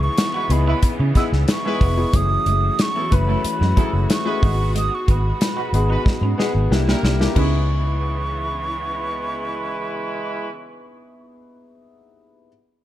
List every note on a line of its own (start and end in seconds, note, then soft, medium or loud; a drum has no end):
0.00 2.10 C#3 medium
0.00 2.10 E3 medium
0.00 0.35 B3 medium
0.00 2.10 B3 medium
0.00 0.36 D#4 medium
0.00 0.36 E4 medium
0.00 0.36 G#4 medium
0.00 0.54 C#6 loud
0.18 snare loud
0.18 closed hi-hat medium
0.33 0.47 G#3 medium
0.33 0.48 E4 medium
0.33 0.44 F#4 medium
0.33 0.48 B4 medium
0.49 0.73 C#2 loud
0.49 1.06 B3 medium
0.49 1.06 D#4 medium
0.49 1.06 E4 medium
0.49 1.06 G#4 medium
0.49 0.89 B5 medium
0.49 muted clean electric guitar stroke soft
0.49 closed hi-hat medium
0.67 0.81 G#3 medium
0.67 0.81 E4 medium
0.67 0.77 E4 medium
0.67 0.81 B4 medium
0.83 muted fingered electric bass stroke soft
0.83 muted clean electric guitar stroke soft
0.83 kick medium
0.83 closed hi-hat medium
1.00 1.11 C#3 loud
1.00 1.10 C#4 medium
1.15 1.30 G#3 medium
1.15 1.57 B3 medium
1.15 1.26 B3 medium
1.15 1.57 D#4 medium
1.15 1.30 E4 medium
1.15 1.58 E4 medium
1.15 1.58 G#4 medium
1.15 1.29 B4 loud
1.15 1.24 E6 loud
1.15 kick medium
1.15 snare soft
1.15 closed hi-hat medium
1.32 1.44 C#2 medium
1.32 snare soft
1.48 2.17 C#6 loud
1.48 muted clean electric guitar stroke soft
1.48 snare loud
1.48 closed hi-hat medium
1.64 2.11 G#3 loud
1.64 1.75 G#3 medium
1.64 1.93 B3 medium
1.64 1.93 D#4 medium
1.64 2.11 E4 medium
1.64 1.93 E4 medium
1.64 1.93 G#4 medium
1.64 2.11 B4 loud
1.81 2.04 F1 medium
1.81 1.92 B3 medium
1.81 kick loud
1.81 open hi-hat medium
1.97 2.11 B3 medium
1.97 2.11 D#4 medium
1.97 2.11 E4 medium
1.97 2.11 G#4 medium
2.13 2.36 F#1 loud
2.13 4.40 E3 medium
2.13 2.24 F#3 medium
2.13 2.97 A3 medium
2.13 4.40 A3 medium
2.13 2.97 C#4 medium
2.13 2.98 E4 medium
2.13 6.67 F#4 medium
2.13 2.98 G#4 medium
2.13 2.83 D#6 loud
2.13 kick loud
2.13 closed hi-hat medium
2.31 muted clean electric guitar stroke soft
2.46 2.69 F#1 loud
2.46 2.57 G#3 medium
2.46 closed hi-hat medium
2.79 3.16 C#6 loud
2.79 snare loud
2.79 closed hi-hat medium
2.94 3.09 F#3 medium
2.94 3.06 B3 medium
2.94 3.09 E4 medium
2.94 3.09 A4 medium
3.11 3.35 F#1 medium
3.11 3.67 A3 medium
3.11 3.67 C#4 medium
3.11 3.67 E4 medium
3.11 3.68 B4 medium
3.11 muted clean electric guitar stroke soft
3.11 kick medium
3.11 closed hi-hat medium
3.15 4.11 B5 loud
3.27 3.41 F#3 medium
3.27 3.39 A3 medium
3.27 3.41 E4 medium
3.27 3.41 A4 medium
3.44 muted fingered electric bass stroke soft
3.44 muted clean electric guitar stroke soft
3.44 closed hi-hat medium
3.61 3.72 F#2 loud
3.61 3.71 G#3 medium
3.61 snare soft
3.76 3.90 F#3 medium
3.76 3.87 F#3 medium
3.76 4.18 A3 medium
3.76 4.19 C#4 medium
3.76 3.90 E4 medium
3.76 4.19 E4 medium
3.76 4.19 G#4 medium
3.76 3.90 A4 medium
3.76 kick medium
3.76 closed hi-hat medium
3.93 4.05 F#1 medium
4.10 4.72 C#6 medium
4.10 snare loud
4.10 closed hi-hat medium
4.25 4.72 G#3 loud
4.25 4.42 A3 medium
4.25 4.42 C#4 medium
4.25 4.42 E4 medium
4.25 4.72 F#4 medium
4.25 4.41 G#4 medium
4.25 4.72 B4 loud
4.41 4.88 G#1 medium
4.41 6.68 B2 medium
4.41 6.68 G#3 medium
4.41 4.53 G#3 medium
4.41 5.53 B3 medium
4.41 5.53 D#4 medium
4.41 5.53 F#4 medium
4.41 5.53 G#4 medium
4.41 kick loud
4.41 open hi-hat medium
4.75 4.85 G#3 medium
4.75 4.96 D#6 loud
4.75 closed hi-hat medium
4.91 5.12 C#6 medium
4.91 muted clean electric guitar stroke soft
5.08 5.31 G#1 medium
5.08 5.18 B3 medium
5.08 6.72 B5 medium
5.08 kick loud
5.08 closed hi-hat medium
5.41 snare loud
5.41 closed hi-hat medium
5.56 5.70 G#3 medium
5.56 5.70 F#4 medium
5.56 5.67 F#4 medium
5.56 5.70 B4 medium
5.73 5.95 G#1 medium
5.73 6.29 B3 medium
5.73 6.29 D#4 medium
5.73 6.29 F#4 medium
5.73 6.29 G#4 medium
5.73 muted clean electric guitar stroke soft
5.73 closed hi-hat medium
5.89 6.03 G#3 medium
5.89 5.99 D#4 medium
5.89 6.03 F#4 medium
5.89 6.03 B4 medium
6.06 muted fingered electric bass stroke soft
6.06 muted clean electric guitar stroke soft
6.06 kick medium
6.06 snare medium
6.21 6.33 G#2 loud
6.21 6.33 C#4 medium
6.38 6.53 G#3 medium
6.38 6.71 B3 medium
6.38 6.49 B3 medium
6.38 6.71 D#4 medium
6.38 6.52 F#4 medium
6.38 6.71 F#4 medium
6.38 6.71 G#4 medium
6.38 6.52 B4 medium
6.38 snare medium
6.55 6.66 G#1 medium
6.71 6.93 C2 medium
6.71 7.36 D3 medium
6.71 6.85 A#3 medium
6.71 7.36 A#3 medium
6.71 6.85 D4 medium
6.71 6.85 E4 medium
6.71 7.36 E4 medium
6.71 6.85 G4 loud
6.71 muted clean electric guitar stroke soft
6.71 snare medium
6.87 7.34 G3 medium
6.87 7.15 A#3 medium
6.87 6.97 A#3 medium
6.87 7.15 D4 medium
6.87 7.16 E4 medium
6.87 7.34 E4 medium
6.87 7.16 G4 medium
6.87 7.34 A#4 loud
6.87 snare medium
7.03 7.26 C2 medium
7.03 7.14 C4 medium
7.03 snare loud
7.20 7.34 A#3 medium
7.20 7.34 D4 medium
7.20 7.34 E4 medium
7.20 7.34 G4 medium
7.20 snare medium
7.33 10.49 C#2 medium
7.33 10.48 C#3 medium
7.33 10.48 E3 medium
7.33 10.49 G#3 medium
7.33 10.46 B3 medium
7.33 10.49 B3 medium
7.33 7.56 C#4 medium
7.33 10.48 D#4 medium
7.33 10.49 E4 medium
7.33 10.50 E4 medium
7.33 10.49 B4 medium
7.33 10.49 C#6 medium
7.33 kick loud
7.33 crash medium
7.38 10.51 G#4 medium